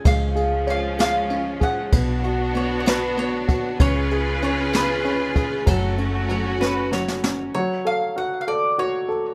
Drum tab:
RD |x-x-x-x-x-x-|x-x-x-x-x-x-|x-x-x-x-x-x-|x-x-x-------|
SD |------o-----|------o-----|------o-----|------o-ooo-|
BD |o---------o-|o---------o-|o---------o-|o-----------|

RD |------------|
SD |------------|
BD |------------|